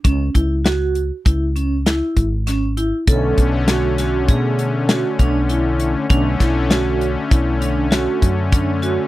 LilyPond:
<<
  \new Staff \with { instrumentName = "Vibraphone" } { \time 5/4 \key b \dorian \tempo 4 = 99 cis'8 e'8 fis'4 e'8 cis'8 e'4 cis'8 e'8 | a'4 fis'8 fis'8 gis'4 fis'8 d'8 e'4 | d'8 e'8 fis'4 e'8 d'8 fis'4 d'8 fis'8 | }
  \new Staff \with { instrumentName = "Analog synth pad" } { \time 5/4 \key b \dorian r1 r4 | <d a cis'>1~ <d a cis'>4 | <d a cis'>1~ <d a cis'>4 | }
  \new Staff \with { instrumentName = "Fretless electric bass" } { \clef bass \time 5/4 \key b \dorian cis,8 cis,4. cis,4. gis,,4. | b,,8 b,,4. b,4. b,,4. | b,,8 b,,4. b,,4. fis,4. | }
  \new DrumStaff \with { instrumentName = "Drums" } \drummode { \time 5/4 <hh bd>8 <hh bd>8 <hh sn>8 hh8 <hh bd>8 hh8 <hh sn>8 <hh bd>8 <hh sn>8 hh8 | <hh bd>8 <hh bd>8 <hh sn>8 <hh sn>8 <hh bd>8 hh8 <hh sn>8 <hh bd>8 hh8 hh8 | <hh bd>8 <hh bd sn>8 <hh sn>8 hh8 <hh bd>8 hh8 <hh sn>8 <hh bd>8 <hh bd>8 hh8 | }
>>